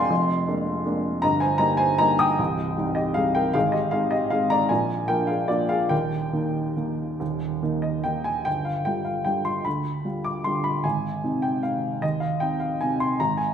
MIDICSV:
0, 0, Header, 1, 2, 480
1, 0, Start_track
1, 0, Key_signature, -3, "major"
1, 0, Tempo, 373832
1, 128, Time_signature, 3, 2, 24, 8
1, 2050, Tempo, 388350
1, 6370, Tempo, 421644
1, 10210, Tempo, 396563
1, 14050, Tempo, 387347
1, 16405, End_track
2, 0, Start_track
2, 0, Title_t, "Upright piano"
2, 0, Program_c, 0, 0
2, 0, Control_c, 0, 64, 127
2, 0, Note_on_c, 0, 29, 60
2, 0, Note_on_c, 0, 41, 69
2, 0, Note_on_c, 0, 56, 49
2, 0, Note_on_c, 0, 58, 49
2, 0, Note_on_c, 0, 62, 56
2, 0, Note_on_c, 0, 70, 62
2, 0, Note_on_c, 0, 74, 73
2, 0, Note_on_c, 0, 77, 80
2, 0, Note_on_c, 0, 79, 87
2, 0, Note_on_c, 0, 80, 98
2, 0, Note_on_c, 0, 84, 112
2, 131, Note_off_c, 0, 29, 0
2, 131, Note_on_c, 0, 29, 66
2, 132, Note_off_c, 0, 41, 0
2, 132, Note_on_c, 0, 41, 69
2, 149, Control_c, 0, 64, 0
2, 154, Note_off_c, 0, 70, 0
2, 154, Note_off_c, 0, 74, 0
2, 158, Note_off_c, 0, 56, 0
2, 160, Note_off_c, 0, 58, 0
2, 160, Note_off_c, 0, 79, 0
2, 163, Note_off_c, 0, 62, 0
2, 163, Note_off_c, 0, 80, 0
2, 344, Control_c, 0, 64, 127
2, 593, Note_off_c, 0, 29, 0
2, 594, Note_off_c, 0, 41, 0
2, 611, Note_on_c, 0, 56, 49
2, 616, Note_on_c, 0, 58, 47
2, 621, Note_on_c, 0, 62, 50
2, 1049, Note_off_c, 0, 56, 0
2, 1052, Note_off_c, 0, 58, 0
2, 1054, Note_off_c, 0, 62, 0
2, 1096, Note_on_c, 0, 56, 53
2, 1101, Note_on_c, 0, 58, 52
2, 1106, Note_on_c, 0, 62, 55
2, 1524, Note_off_c, 0, 77, 0
2, 1529, Note_off_c, 0, 56, 0
2, 1531, Note_off_c, 0, 58, 0
2, 1534, Note_off_c, 0, 62, 0
2, 1565, Note_off_c, 0, 84, 0
2, 1565, Note_on_c, 0, 82, 99
2, 1583, Note_on_c, 0, 43, 69
2, 1584, Note_on_c, 0, 75, 76
2, 1586, Note_on_c, 0, 31, 61
2, 1600, Control_c, 0, 64, 0
2, 1791, Control_c, 0, 64, 127
2, 1800, Note_off_c, 0, 75, 0
2, 1802, Note_on_c, 0, 80, 84
2, 1806, Note_off_c, 0, 82, 0
2, 1813, Note_on_c, 0, 72, 65
2, 2028, Note_on_c, 0, 82, 99
2, 2034, Note_off_c, 0, 72, 0
2, 2039, Note_off_c, 0, 43, 0
2, 2040, Note_off_c, 0, 31, 0
2, 2043, Note_on_c, 0, 55, 49
2, 2045, Note_off_c, 0, 80, 0
2, 2047, Note_on_c, 0, 75, 68
2, 2052, Note_on_c, 0, 58, 47
2, 2057, Note_on_c, 0, 63, 52
2, 2267, Note_off_c, 0, 75, 0
2, 2268, Note_on_c, 0, 80, 91
2, 2275, Note_off_c, 0, 82, 0
2, 2283, Note_on_c, 0, 72, 70
2, 2485, Note_off_c, 0, 55, 0
2, 2489, Note_off_c, 0, 58, 0
2, 2492, Note_off_c, 0, 63, 0
2, 2518, Note_off_c, 0, 72, 0
2, 2528, Note_off_c, 0, 80, 0
2, 2529, Note_on_c, 0, 82, 107
2, 2539, Note_on_c, 0, 75, 73
2, 2543, Note_on_c, 0, 55, 49
2, 2550, Note_on_c, 0, 58, 49
2, 2554, Note_on_c, 0, 63, 56
2, 2776, Note_off_c, 0, 75, 0
2, 2783, Note_on_c, 0, 87, 100
2, 2788, Note_off_c, 0, 82, 0
2, 2797, Note_on_c, 0, 79, 83
2, 2984, Note_off_c, 0, 55, 0
2, 2988, Note_off_c, 0, 58, 0
2, 2991, Note_off_c, 0, 63, 0
2, 3029, Note_on_c, 0, 36, 64
2, 3033, Note_on_c, 0, 24, 62
2, 3053, Control_c, 0, 64, 0
2, 3236, Control_c, 0, 64, 127
2, 3486, Note_off_c, 0, 36, 0
2, 3488, Note_off_c, 0, 24, 0
2, 3506, Note_on_c, 0, 55, 47
2, 3511, Note_on_c, 0, 60, 48
2, 3515, Note_on_c, 0, 63, 56
2, 3696, Note_off_c, 0, 79, 0
2, 3721, Note_on_c, 0, 75, 81
2, 3733, Note_on_c, 0, 67, 60
2, 3738, Note_off_c, 0, 87, 0
2, 3940, Note_off_c, 0, 55, 0
2, 3943, Note_off_c, 0, 60, 0
2, 3945, Note_off_c, 0, 63, 0
2, 3960, Note_on_c, 0, 77, 92
2, 3964, Note_off_c, 0, 67, 0
2, 3975, Note_off_c, 0, 75, 0
2, 3976, Note_on_c, 0, 68, 67
2, 3980, Note_on_c, 0, 60, 47
2, 3981, Note_on_c, 0, 55, 48
2, 3990, Note_on_c, 0, 63, 53
2, 4205, Note_off_c, 0, 68, 0
2, 4214, Note_off_c, 0, 77, 0
2, 4214, Note_on_c, 0, 79, 92
2, 4227, Note_on_c, 0, 70, 70
2, 4410, Note_off_c, 0, 55, 0
2, 4410, Note_off_c, 0, 60, 0
2, 4416, Note_off_c, 0, 63, 0
2, 4445, Note_off_c, 0, 70, 0
2, 4446, Note_on_c, 0, 77, 97
2, 4454, Note_off_c, 0, 79, 0
2, 4462, Note_on_c, 0, 32, 70
2, 4463, Note_on_c, 0, 68, 73
2, 4464, Note_on_c, 0, 44, 59
2, 4485, Control_c, 0, 64, 0
2, 4675, Note_on_c, 0, 75, 77
2, 4678, Note_off_c, 0, 68, 0
2, 4686, Note_off_c, 0, 77, 0
2, 4690, Note_on_c, 0, 67, 58
2, 4698, Control_c, 0, 64, 127
2, 4911, Note_off_c, 0, 67, 0
2, 4912, Note_on_c, 0, 77, 88
2, 4916, Note_off_c, 0, 32, 0
2, 4917, Note_off_c, 0, 44, 0
2, 4920, Note_off_c, 0, 75, 0
2, 4923, Note_on_c, 0, 68, 67
2, 4925, Note_on_c, 0, 56, 49
2, 4930, Note_on_c, 0, 60, 43
2, 4934, Note_on_c, 0, 63, 50
2, 5149, Note_off_c, 0, 68, 0
2, 5152, Note_on_c, 0, 75, 79
2, 5160, Note_off_c, 0, 77, 0
2, 5164, Note_on_c, 0, 67, 59
2, 5361, Note_off_c, 0, 56, 0
2, 5364, Note_off_c, 0, 60, 0
2, 5366, Note_off_c, 0, 63, 0
2, 5392, Note_off_c, 0, 67, 0
2, 5397, Note_on_c, 0, 77, 89
2, 5404, Note_off_c, 0, 75, 0
2, 5407, Note_on_c, 0, 68, 67
2, 5410, Note_on_c, 0, 56, 43
2, 5417, Note_on_c, 0, 60, 44
2, 5418, Note_on_c, 0, 63, 50
2, 5634, Note_off_c, 0, 68, 0
2, 5640, Note_on_c, 0, 82, 94
2, 5646, Note_off_c, 0, 77, 0
2, 5656, Note_on_c, 0, 74, 70
2, 5840, Note_off_c, 0, 56, 0
2, 5843, Note_off_c, 0, 60, 0
2, 5844, Note_off_c, 0, 63, 0
2, 5871, Note_off_c, 0, 74, 0
2, 5873, Note_on_c, 0, 80, 79
2, 5882, Note_off_c, 0, 82, 0
2, 5889, Note_on_c, 0, 74, 58
2, 5892, Note_on_c, 0, 46, 58
2, 5893, Note_on_c, 0, 34, 61
2, 5906, Control_c, 0, 64, 0
2, 6098, Control_c, 0, 64, 127
2, 6336, Note_off_c, 0, 74, 0
2, 6355, Note_on_c, 0, 79, 92
2, 6357, Note_off_c, 0, 46, 0
2, 6358, Note_off_c, 0, 34, 0
2, 6362, Note_off_c, 0, 80, 0
2, 6368, Note_on_c, 0, 53, 44
2, 6368, Note_on_c, 0, 70, 68
2, 6373, Note_on_c, 0, 58, 41
2, 6374, Note_on_c, 0, 62, 52
2, 6574, Note_on_c, 0, 77, 77
2, 6583, Note_off_c, 0, 70, 0
2, 6588, Note_on_c, 0, 68, 56
2, 6593, Note_off_c, 0, 79, 0
2, 6787, Note_off_c, 0, 53, 0
2, 6790, Note_off_c, 0, 58, 0
2, 6790, Note_off_c, 0, 62, 0
2, 6811, Note_off_c, 0, 68, 0
2, 6811, Note_on_c, 0, 74, 83
2, 6819, Note_on_c, 0, 65, 60
2, 6821, Note_off_c, 0, 77, 0
2, 6825, Note_on_c, 0, 53, 41
2, 6831, Note_on_c, 0, 58, 45
2, 6834, Note_on_c, 0, 62, 49
2, 7045, Note_off_c, 0, 65, 0
2, 7050, Note_on_c, 0, 77, 89
2, 7058, Note_off_c, 0, 74, 0
2, 7063, Note_on_c, 0, 68, 62
2, 7255, Note_off_c, 0, 53, 0
2, 7257, Note_off_c, 0, 58, 0
2, 7259, Note_off_c, 0, 62, 0
2, 7283, Note_on_c, 0, 79, 85
2, 7284, Note_off_c, 0, 68, 0
2, 7293, Note_on_c, 0, 70, 61
2, 7295, Note_off_c, 0, 77, 0
2, 7297, Note_on_c, 0, 27, 57
2, 7299, Note_on_c, 0, 39, 61
2, 7326, Control_c, 0, 64, 0
2, 7509, Control_c, 0, 64, 127
2, 7764, Note_off_c, 0, 27, 0
2, 7765, Note_off_c, 0, 39, 0
2, 7781, Note_on_c, 0, 51, 42
2, 7782, Note_on_c, 0, 58, 42
2, 7783, Note_on_c, 0, 63, 49
2, 8231, Note_off_c, 0, 51, 0
2, 8232, Note_off_c, 0, 58, 0
2, 8233, Note_off_c, 0, 63, 0
2, 8273, Note_on_c, 0, 51, 44
2, 8277, Note_on_c, 0, 58, 42
2, 8283, Note_on_c, 0, 63, 42
2, 8725, Note_off_c, 0, 51, 0
2, 8727, Note_off_c, 0, 58, 0
2, 8730, Note_off_c, 0, 63, 0
2, 8771, Note_on_c, 0, 39, 61
2, 8772, Note_on_c, 0, 27, 52
2, 8797, Control_c, 0, 64, 0
2, 8968, Control_c, 0, 64, 127
2, 9236, Note_off_c, 0, 39, 0
2, 9237, Note_off_c, 0, 27, 0
2, 9252, Note_on_c, 0, 51, 41
2, 9258, Note_on_c, 0, 58, 44
2, 9259, Note_on_c, 0, 63, 43
2, 9477, Note_on_c, 0, 75, 65
2, 9691, Note_off_c, 0, 51, 0
2, 9694, Note_off_c, 0, 58, 0
2, 9695, Note_off_c, 0, 63, 0
2, 9705, Note_off_c, 0, 79, 0
2, 9722, Note_on_c, 0, 79, 78
2, 9728, Note_off_c, 0, 75, 0
2, 9735, Note_on_c, 0, 51, 43
2, 9741, Note_on_c, 0, 58, 41
2, 9744, Note_on_c, 0, 63, 46
2, 9927, Note_off_c, 0, 70, 0
2, 9958, Note_on_c, 0, 80, 84
2, 9971, Note_off_c, 0, 79, 0
2, 10162, Note_off_c, 0, 51, 0
2, 10166, Note_off_c, 0, 58, 0
2, 10167, Note_off_c, 0, 63, 0
2, 10193, Note_on_c, 0, 79, 91
2, 10199, Note_off_c, 0, 80, 0
2, 10207, Note_on_c, 0, 31, 53
2, 10234, Control_c, 0, 64, 0
2, 10433, Note_on_c, 0, 77, 64
2, 10439, Note_off_c, 0, 79, 0
2, 10456, Control_c, 0, 64, 127
2, 10674, Note_off_c, 0, 31, 0
2, 10677, Note_on_c, 0, 79, 76
2, 10683, Note_off_c, 0, 77, 0
2, 10694, Note_on_c, 0, 50, 40
2, 10698, Note_on_c, 0, 55, 43
2, 10701, Note_on_c, 0, 65, 44
2, 10914, Note_on_c, 0, 77, 63
2, 10927, Note_off_c, 0, 79, 0
2, 11131, Note_off_c, 0, 50, 0
2, 11133, Note_off_c, 0, 55, 0
2, 11135, Note_off_c, 0, 65, 0
2, 11155, Note_on_c, 0, 79, 75
2, 11168, Note_off_c, 0, 77, 0
2, 11175, Note_on_c, 0, 50, 40
2, 11180, Note_on_c, 0, 55, 41
2, 11186, Note_on_c, 0, 65, 40
2, 11401, Note_on_c, 0, 84, 79
2, 11408, Note_off_c, 0, 79, 0
2, 11605, Note_off_c, 0, 50, 0
2, 11608, Note_off_c, 0, 55, 0
2, 11611, Note_off_c, 0, 65, 0
2, 11640, Note_on_c, 0, 83, 72
2, 11644, Note_off_c, 0, 84, 0
2, 11653, Note_on_c, 0, 38, 51
2, 11677, Control_c, 0, 64, 0
2, 11838, Control_c, 0, 64, 127
2, 12114, Note_off_c, 0, 38, 0
2, 12127, Note_on_c, 0, 55, 42
2, 12132, Note_on_c, 0, 65, 41
2, 12364, Note_off_c, 0, 83, 0
2, 12364, Note_on_c, 0, 86, 76
2, 12567, Note_off_c, 0, 55, 0
2, 12570, Note_off_c, 0, 65, 0
2, 12605, Note_on_c, 0, 84, 86
2, 12612, Note_off_c, 0, 86, 0
2, 12622, Note_on_c, 0, 50, 40
2, 12628, Note_on_c, 0, 55, 40
2, 12631, Note_on_c, 0, 65, 42
2, 12841, Note_on_c, 0, 83, 80
2, 12852, Note_off_c, 0, 84, 0
2, 13047, Note_off_c, 0, 50, 0
2, 13050, Note_off_c, 0, 55, 0
2, 13051, Note_off_c, 0, 65, 0
2, 13081, Note_on_c, 0, 80, 74
2, 13083, Note_off_c, 0, 83, 0
2, 13094, Note_on_c, 0, 32, 54
2, 13111, Control_c, 0, 64, 0
2, 13333, Control_c, 0, 64, 127
2, 13548, Note_off_c, 0, 32, 0
2, 13562, Note_on_c, 0, 48, 39
2, 13570, Note_on_c, 0, 60, 39
2, 13571, Note_on_c, 0, 63, 44
2, 13791, Note_on_c, 0, 79, 72
2, 13799, Note_off_c, 0, 80, 0
2, 14001, Note_off_c, 0, 48, 0
2, 14005, Note_off_c, 0, 60, 0
2, 14005, Note_off_c, 0, 63, 0
2, 14040, Note_on_c, 0, 77, 70
2, 14042, Note_off_c, 0, 79, 0
2, 14057, Note_on_c, 0, 48, 40
2, 14062, Note_on_c, 0, 60, 39
2, 14068, Note_on_c, 0, 63, 44
2, 14491, Note_off_c, 0, 48, 0
2, 14494, Note_off_c, 0, 60, 0
2, 14497, Note_off_c, 0, 63, 0
2, 14526, Note_on_c, 0, 75, 81
2, 14531, Note_off_c, 0, 77, 0
2, 14541, Note_on_c, 0, 39, 53
2, 14554, Control_c, 0, 64, 0
2, 14745, Control_c, 0, 64, 127
2, 14751, Note_on_c, 0, 77, 67
2, 14766, Note_off_c, 0, 75, 0
2, 14998, Note_on_c, 0, 79, 79
2, 15000, Note_off_c, 0, 39, 0
2, 15001, Note_off_c, 0, 77, 0
2, 15010, Note_on_c, 0, 60, 38
2, 15020, Note_on_c, 0, 63, 42
2, 15239, Note_on_c, 0, 77, 67
2, 15250, Note_off_c, 0, 79, 0
2, 15455, Note_off_c, 0, 60, 0
2, 15460, Note_off_c, 0, 63, 0
2, 15496, Note_off_c, 0, 77, 0
2, 15499, Note_on_c, 0, 80, 77
2, 15515, Note_on_c, 0, 48, 44
2, 15517, Note_on_c, 0, 60, 42
2, 15522, Note_on_c, 0, 63, 43
2, 15742, Note_on_c, 0, 84, 85
2, 15744, Note_off_c, 0, 80, 0
2, 15938, Note_off_c, 0, 48, 0
2, 15939, Note_off_c, 0, 60, 0
2, 15942, Note_off_c, 0, 63, 0
2, 15977, Note_off_c, 0, 84, 0
2, 15985, Note_on_c, 0, 82, 90
2, 15997, Note_on_c, 0, 32, 57
2, 15998, Control_c, 0, 64, 0
2, 16203, Note_on_c, 0, 80, 73
2, 16208, Control_c, 0, 64, 127
2, 16214, Note_off_c, 0, 82, 0
2, 16405, Note_off_c, 0, 32, 0
2, 16405, Note_off_c, 0, 80, 0
2, 16405, End_track
0, 0, End_of_file